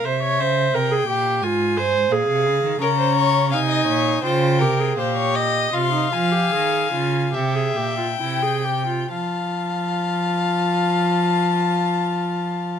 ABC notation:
X:1
M:4/4
L:1/16
Q:1/4=78
K:Fm
V:1 name="Violin"
=e4 g4 a4 f4 | b4 a4 g4 f2 e2 | c'2 a6 g8 | =a16 |]
V:2 name="Violin"
z16 | B c d2 f e d2 c2 B2 c d e2 | f8 =e4 g4 | f16 |]
V:3 name="Viola"
c d c2 B A G2 F2 c2 A4 | D4 E4 F2 G A G4 | F E F G A2 F2 G A G F =E A G F | F16 |]
V:4 name="Cello" clef=bass
C,2 D,2 C,2 B,,2 A,,2 G,, A,, B,, C, D, E, | D,4 C,2 B,,2 D,2 C,2 B,,4 | C,2 F,2 E,2 D,2 C,2 B,,2 C,4 | F,16 |]